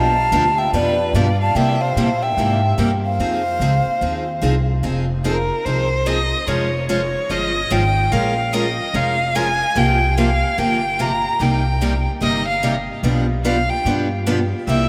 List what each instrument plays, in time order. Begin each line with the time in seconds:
Already playing: upright bass B1, steel-string acoustic guitar B2 F3 B3 D4 G4 B4, violin F5, ocarina A5
0.32 upright bass D2, steel-string acoustic guitar B2 F3 B3 D4 G4 B4
0.58 violin E5, ocarina G5
0.73 upright bass F2, steel-string acoustic guitar B2 F3 B3 D4 G4 B4, violin B4, ocarina D5
1.13 upright bass G2, steel-string acoustic guitar B2 F3 B3 D4 G4 B4, violin D5, ocarina F5
1.40 violin F5, ocarina A5
1.55 steel-string acoustic guitar C3 G3 A#3 E4 G4, upright bass C3, violin E5, ocarina G5
1.81 violin C5, ocarina F5
1.96 upright bass A#2, steel-string acoustic guitar C3 G3 A#3 E4 G4
2.23 violin E5, ocarina G5
2.37 upright bass G#2, steel-string acoustic guitar C3 G3 A#3 E4 G4
2.78 upright bass G2, steel-string acoustic guitar C3 G3 A#3 E4 G4
3.04 violin C5, ocarina F5
3.19 upright bass F2, steel-string acoustic guitar F3 C4 D#4 G#4
3.60 upright bass C#2, steel-string acoustic guitar F3 C4 D#4 G#4
3.86 muted upright bass stroke
4.01 upright bass D#2, steel-string acoustic guitar F3 C4 D#4 G#4
4.42 upright bass C2, steel-string acoustic guitar F3 C4 D#4 G#4
4.83 upright bass F1, steel-string acoustic guitar F3 C4 D#4 G#4
5.24 steel-string acoustic guitar F3 C4 D#4 G#4, violin A#4
5.65 upright bass C2, steel-string acoustic guitar F3 C4 D#4 G#4, violin C5
6.06 steel-string acoustic guitar F3 C4 D#4 G#4, violin D#5
6.47 upright bass F1, steel-string acoustic guitar F3 G#3 C#4 F4 C5, violin C#5
6.88 steel-string acoustic guitar F3 G#3 C#4 F4 C5, violin C#5
7.29 upright bass G1, steel-string acoustic guitar F3 G#3 C#4 F4 C5, violin D#5
7.70 upright bass G#1, steel-string acoustic guitar F3 G#3 C#4 F4 C5, violin G5
8.12 upright bass A#1, steel-string acoustic guitar F3 G#3 C#4 F4 A#4, violin F5
8.53 steel-string acoustic guitar F3 G#3 C#4 F4 A#4, violin D#5
8.94 upright bass F1, steel-string acoustic guitar F3 G#3 C#4 F4 A#4, violin F5
9.35 steel-string acoustic guitar F3 G#3 C#4 F4 A#4, violin G#5
9.75 upright bass C2, steel-string acoustic guitar C3 F3 A#3 F4 G4, violin G5
10.17 steel-string acoustic guitar C3 F3 A#3 F4 G4, violin F5
10.58 upright bass G1, steel-string acoustic guitar C3 F3 A#3 F4 G4, violin G5
10.99 steel-string acoustic guitar C3 F3 A#3 F4 G4, violin A#5
11.40 upright bass C2, steel-string acoustic guitar C3 G3 A#3 D#4 G4, violin G5
11.81 steel-string acoustic guitar C3 G3 A#3 D#4 G4
12.21 upright bass G1, steel-string acoustic guitar C3 G3 A#3 D#4 G4, violin D#5
12.47 violin F5
12.63 steel-string acoustic guitar C3 G3 A#3 D#4 G4
13.03 upright bass B1, steel-string acoustic guitar B2 F3 B3 D4 G4 B4
13.44 steel-string acoustic guitar B2 F3 B3 D4 G4 B4, violin F5
13.69 violin G5
13.85 upright bass G2, steel-string acoustic guitar B2 F3 B3 D4 G4 B4
14.27 steel-string acoustic guitar B2 F3 B3 D4 G4 B4
14.67 upright bass C2, steel-string acoustic guitar C3 G3 A#3 E4 G4, violin E5